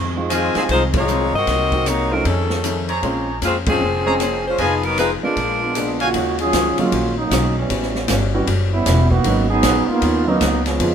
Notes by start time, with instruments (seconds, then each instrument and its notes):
Already playing: hollow-body jazz guitar F2 D#3 G#3 C4, upright bass F2
0.16 grand piano G#3 C4 D#4 F4
0.29 hollow-body jazz guitar F2 D#3 G#3 C4, saxophone section G#3 C4 D#4 F4, trumpet section F4 C5 D#5 G#5, hi-hat pedal, ride
0.55 saxophone section F3 C4 D#4 G#4, grand piano G#3 C4 D#4 F4, muted upright bass stroke, snare, ride
0.69 upright bass C2, hollow-body jazz guitar F2 D#3 G#3 C4, saxophone section G#3 D#4 F4 C5, kick, ride
0.93 saxophone section G#3 D#4 F4 C#5, kick, ride
1.08 hollow-body jazz guitar F2 D#3 G#3 C4, hi-hat pedal
1.33 upright bass G2, saxophone section C4 F#4 A#4 D#5
1.47 upright bass C2, hollow-body jazz guitar C3 F#3 A#3 D#4, kick, snare, ride
1.72 grand piano A#3 C4 D#4 F#4, kick, ride
1.86 hollow-body jazz guitar C3 F#3 A#3 D#4, saxophone section A#3 D#4 F#4 C#5, hi-hat pedal, ride
2.12 saxophone section F#3 C4 D#4 A#4, grand piano A3 C#4 D#4 F4
2.25 hollow-body jazz guitar F2 D#3 A3 C#4, upright bass F2, saxophone section D#3 C#4 G#4 A4, kick, ride
2.50 snare
2.64 hollow-body jazz guitar F2 D#3 A3 C#4, hi-hat pedal, ride
2.89 trumpet section G#4 C5 C#5 A#5, ride
3.02 upright bass A#1, grand piano G#3 C4 C#4 F4, hollow-body jazz guitar A#3 C#4 G#4 C5, kick, ride
3.42 upright bass F2, saxophone section G#3 C4 C#4 F4, hollow-body jazz guitar A#3 C#4 G#4 C5, hi-hat pedal, ride
3.66 saxophone section F3 C4 C#4 G#4, grand piano G#3 C4 C#4 F4, kick, ride
3.81 upright bass F1, hollow-body jazz guitar A#3 C#4 G#4 C5
4.06 grand piano G#3 C4 C#4 G#4, trumpet section G#4 C5 C#5 A#5
4.20 hollow-body jazz guitar A#3 C#4 G#4 C5, hi-hat pedal, ride
4.46 saxophone section G#3 C#4 F4 C5
4.58 upright bass F1, hollow-body jazz guitar F3 B3 D#4, saxophone section F3 B3 D#4 G#4, trumpet section F4 B4 D#5 G#5, kick, ride
4.63 hollow-body jazz guitar G#4
4.83 saxophone section F#3 B3 D#4 A#4, ride
4.98 hollow-body jazz guitar F3 B3 D#4 G#4, saxophone section G#3 D#4 F4 B4, hi-hat pedal, ride
5.23 grand piano G#3 B3 D4 F4, saxophone section G#3 D4 F4 A#4
5.36 upright bass A#1, hollow-body jazz guitar A#2 G#3 B3 D4, kick, ride
5.61 trombone section G#3 B3 D4 F4
5.75 hollow-body jazz guitar A#2 G#3 B3 D4, hi-hat pedal, ride
6.00 trombone section C#3 A#3 F4 F#4, trumpet section F#4 C#5 F5 G#5, ride
6.14 upright bass D#2, hollow-body jazz guitar D#3 G#3 C#4 F#4, kick, ride
6.39 trombone section F#3 C#4 F4 G#4, ride
6.53 upright bass C#2, hollow-body jazz guitar D#3 G#3 C#4 F#4, kick, snare, hi-hat pedal, ride
6.78 grand piano F#3 G#3 A#3 C#4 F4, trombone section F#3 A#3 C#4 F4, muted upright bass stroke, ride
6.92 upright bass A#1, hollow-body jazz guitar D#3 G#3 C#4 F#4, kick, ride
7.18 trombone section F#3 A#3 C#4 D#4
7.30 upright bass B1, hollow-body jazz guitar D#3 G#3 C#4 F#4, kick, snare, hi-hat pedal, ride
7.57 trombone section E3 G3 B3 C#4
7.69 upright bass A1, hollow-body jazz guitar A2 G3 C#4 F#4, kick, ride
7.83 snare
7.95 snare
8.08 upright bass G1, hollow-body jazz guitar A2 G3 C#4 F#4, kick, snare, hi-hat pedal, ride
8.34 grand piano E3 G3 B3 C#4 F#4
8.47 upright bass F#1, hollow-body jazz guitar A2 G3 C#4 F#4, kick, ride
8.72 trombone section G3 B3 C#4 E4
8.86 upright bass E1, hollow-body jazz guitar A2 G3 C#4 F#4, kick, snare, hi-hat pedal, ride
9.10 trombone section D#3 A#3 B3 F#4, kick
9.24 upright bass G#1, hollow-body jazz guitar G#2 F#3 B3 C#4, grand piano F#3 A#3 B3 C#4 D#4, kick, ride
9.49 trombone section F#3 B3 D#4 G#4
9.63 upright bass A#1, hollow-body jazz guitar G#2 F#3 B3 C#4, kick, snare, hi-hat pedal, ride
9.87 trombone section A#3 B3 D#4 F4, muted upright bass stroke
10.02 upright bass D#2, hollow-body jazz guitar G#2 F#3 B3 C#4, kick, ride
10.26 trombone section F#3 A#3 B3 D#4, grand piano F#3 A#3 B3 C#4 D#4
10.41 upright bass C#2, hollow-body jazz guitar G#2 F#3 B3 C#4, kick, snare, hi-hat pedal, ride
10.65 trombone section F3 G#3 B3 C#4, snare, ride
10.80 upright bass F2, hollow-body jazz guitar F3 B3 D#4 G#4, grand piano F3 G#3 B3 D#4 F4, kick, ride